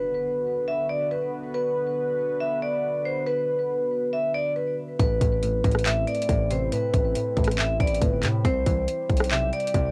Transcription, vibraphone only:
Already playing: B4
0.68 E5
0.89 D5
1.11 B4
1.54 B4
2.40 E5
2.62 D5
3.05 C5
3.27 B4
4.13 E5
4.34 D5
4.56 B4
5.00 B4
5.86 E5
6.07 D5
6.51 C5
6.72 B4
7.58 E5
7.80 D5
8.02 B4
8.45 C5
9.31 E5
9.53 D5

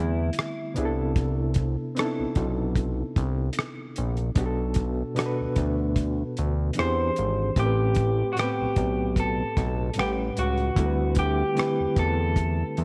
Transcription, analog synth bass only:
Already playing: E2
0.78 C2
2.19 B1
2.37 B1
3.17 C2
3.98 A#1
4.37 B1
5.41 D2
5.58 D2
6.39 D2
6.79 E2
7.18 G#1
7.57 A1
8.60 B1
8.77 B1
9.58 B1
9.98 A1
10.38 C#2
10.77 D2
11.80 E2
11.98 E2
12.78 E2

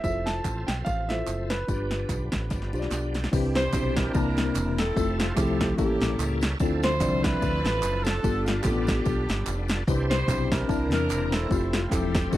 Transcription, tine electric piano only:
0.03 E4 F4 G#4 C5
0.10 A4
1.09 E4 F4 A4 C5
1.67 G2 D4 F4 G4 B4
2.73 D4 F4 G4 C5
2.79 D5
3.32 C3 C4 D4 E4 G4 B4
3.73 C4 D4 E4 G4 C5
4.14 C3 A#3 C4 D4 E4 A5
4.96 A3 C4 E4 F4 A4
5.36 F3 A3 C4 E4 G#4
5.43 A4
5.78 A2 A#3 C#4 E4 G4 A4
6.60 D3 C4 D4 E4 F4 A4
7.00 F3 C4 D4 D5 E5
8.23 G2 B3 D4 F4 G4 A4
8.65 A3 D4 F4 G4 A4
8.70 B3
9.88 C3 C4 D4 E4 G4 B4
10.28 C4 D4 E4 G4 C5
10.68 C3 C4 D4 E4 A#4 A5
11.49 C4 E4 F4 G4 A4
11.90 F3 C4 E4 G4 A4
12.32 A3 C4 D#4 F#4 G#4

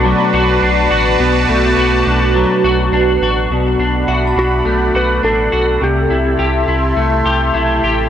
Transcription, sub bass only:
Already playing: B1
0.33 B1
0.62 B1
0.91 A1
1.19 B1
1.49 B1
1.77 B1
2.06 B1
2.64 B1
2.92 B1
3.21 A1
3.50 B1
3.78 B1
4.08 B1
4.36 B1
4.65 B1
4.94 B1
5.23 A1
5.53 B1
5.81 C2
6.10 C2
6.39 C2
6.68 C2
6.97 C2
7.25 C2
7.54 B1
7.83 A1

